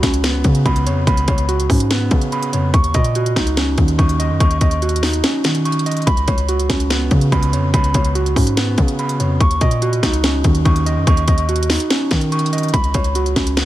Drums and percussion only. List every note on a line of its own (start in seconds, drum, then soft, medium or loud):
0.03 kick medium
0.03 snare loud
0.03 closed hi-hat medium
0.14 closed hi-hat medium
0.24 snare loud
0.24 closed hi-hat medium
0.44 kick medium
0.44 closed hi-hat medium
0.55 closed hi-hat medium
0.66 kick medium
0.66 closed hi-hat soft
0.76 closed hi-hat medium
0.87 closed hi-hat medium
1.07 kick loud
1.07 closed hi-hat medium
1.17 closed hi-hat medium
1.28 kick medium
1.28 closed hi-hat medium
1.38 closed hi-hat medium
1.49 closed hi-hat medium
1.60 closed hi-hat medium
1.70 kick medium
1.70 open hi-hat medium
1.80 closed hi-hat medium
1.91 snare loud
1.91 closed hi-hat medium
2.11 kick medium
2.11 closed hi-hat medium
2.21 closed hi-hat medium
2.32 closed hi-hat soft
2.43 closed hi-hat medium
2.53 closed hi-hat medium
2.74 kick loud
2.74 closed hi-hat medium
2.84 closed hi-hat medium
2.94 kick medium
2.94 closed hi-hat medium
3.04 closed hi-hat medium
3.15 closed hi-hat medium
3.26 closed hi-hat medium
3.36 kick medium
3.36 snare medium
3.36 closed hi-hat medium
3.47 closed hi-hat medium
3.57 snare loud
3.57 closed hi-hat medium
3.78 kick loud
3.78 closed hi-hat medium
3.88 closed hi-hat medium
3.99 kick medium
3.99 closed hi-hat soft
4.09 closed hi-hat medium
4.20 closed hi-hat medium
4.40 kick loud
4.40 closed hi-hat medium
4.51 closed hi-hat medium
4.61 kick medium
4.61 closed hi-hat medium
4.71 closed hi-hat medium
4.82 closed hi-hat soft
4.89 closed hi-hat medium
4.96 closed hi-hat medium
5.03 snare medium
5.03 open hi-hat medium
5.13 closed hi-hat medium
5.24 snare loud
5.24 closed hi-hat medium
5.44 snare loud
5.44 closed hi-hat medium
5.55 closed hi-hat medium
5.65 closed hi-hat medium
5.72 closed hi-hat medium
5.79 closed hi-hat medium
5.86 closed hi-hat medium
5.92 closed hi-hat medium
5.97 closed hi-hat soft
6.02 closed hi-hat soft
6.07 kick loud
6.07 closed hi-hat medium
6.17 closed hi-hat medium
6.28 kick medium
6.28 closed hi-hat medium
6.38 closed hi-hat medium
6.49 closed hi-hat medium
6.60 closed hi-hat medium
6.70 kick medium
6.70 snare loud
6.70 closed hi-hat medium
6.80 closed hi-hat medium
6.90 snare loud
6.90 closed hi-hat medium
7.11 kick loud
7.11 closed hi-hat medium
7.21 closed hi-hat medium
7.32 kick medium
7.32 closed hi-hat soft
7.43 closed hi-hat medium
7.53 closed hi-hat medium
7.74 kick loud
7.74 closed hi-hat medium
7.84 closed hi-hat medium
7.94 kick medium
7.94 closed hi-hat medium
8.05 closed hi-hat medium
8.15 closed hi-hat medium
8.26 closed hi-hat medium
8.36 kick medium
8.36 open hi-hat medium
8.47 closed hi-hat medium
8.57 snare loud
8.57 closed hi-hat medium
8.78 kick medium
8.78 closed hi-hat medium
8.88 closed hi-hat medium
8.99 closed hi-hat soft
9.09 closed hi-hat medium
9.20 closed hi-hat medium
9.40 kick loud
9.40 closed hi-hat medium
9.51 closed hi-hat medium
9.61 kick medium
9.61 closed hi-hat medium
9.71 closed hi-hat medium
9.82 closed hi-hat medium
9.93 closed hi-hat medium
10.03 kick medium
10.03 snare loud
10.03 closed hi-hat medium
10.13 closed hi-hat medium
10.24 snare loud
10.24 closed hi-hat medium
10.44 kick medium
10.44 closed hi-hat medium
10.55 closed hi-hat medium
10.65 kick loud
10.65 closed hi-hat soft
10.76 closed hi-hat medium
10.86 closed hi-hat medium
11.07 kick loud
11.07 closed hi-hat medium
11.17 closed hi-hat medium
11.28 kick medium
11.28 closed hi-hat medium
11.38 closed hi-hat medium
11.49 closed hi-hat soft
11.56 closed hi-hat medium
11.63 closed hi-hat medium
11.70 snare medium
11.70 open hi-hat medium
11.80 closed hi-hat medium
11.90 snare loud
11.90 closed hi-hat medium
12.11 kick loud
12.11 snare loud
12.11 closed hi-hat medium
12.21 closed hi-hat medium
12.32 closed hi-hat medium
12.39 closed hi-hat medium
12.46 closed hi-hat medium
12.53 closed hi-hat medium
12.58 closed hi-hat medium
12.63 closed hi-hat soft
12.68 closed hi-hat soft
12.74 kick loud
12.74 closed hi-hat medium
12.84 closed hi-hat medium
12.94 kick medium
12.94 closed hi-hat medium
13.04 closed hi-hat medium
13.15 closed hi-hat medium
13.26 closed hi-hat medium
13.36 kick medium
13.36 snare loud
13.36 closed hi-hat medium
13.47 closed hi-hat medium
13.57 snare loud
13.57 closed hi-hat medium